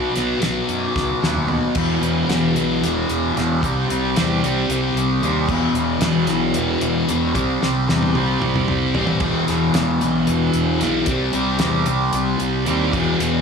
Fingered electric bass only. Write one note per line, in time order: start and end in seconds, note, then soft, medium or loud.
0.16 0.33 B1 medium
0.41 0.59 B1 loud
0.69 0.86 F#2 medium
0.95 1.13 C#2 medium
1.23 1.57 D#2 medium
1.75 2.01 E1 medium
2.01 2.27 E1 medium
2.28 2.54 E1 medium
2.55 2.80 B1 medium
2.82 3.07 E1 medium
3.09 3.34 E1 medium
3.36 3.61 E1 medium
3.63 3.88 C2 medium
3.89 4.14 C2 medium
4.18 4.42 E2 medium
4.43 4.67 C2 medium
4.69 4.94 C2 medium
4.94 5.20 C2 medium
5.21 5.46 D#2 medium
5.48 5.72 E1 medium
5.72 5.99 E1 medium
6.00 6.26 E1 medium
6.27 6.52 B1 loud
6.54 6.79 E1 medium
6.81 7.06 E1 medium
7.08 7.33 E1 medium
7.35 7.60 C2 medium
7.63 7.87 C2 medium
7.88 8.13 E2 medium
8.15 8.40 C2 medium
8.41 8.66 C2 medium
8.68 8.93 C2 medium
8.94 9.21 A1 medium
9.21 9.46 E1 medium
9.48 9.73 E1 medium
9.74 9.99 E1 medium
10.02 10.26 B1 medium
10.27 10.52 E1 medium
10.54 10.79 E1 medium
10.81 11.06 B1 medium
11.07 11.32 C2 medium
11.34 11.59 C2 medium
11.60 11.85 E2 medium
11.87 12.12 C2 medium
12.14 12.39 C2 medium
12.40 12.65 C2 medium
12.66 12.91 D#2 medium
12.93 13.17 E1 medium
13.18 13.41 E1 medium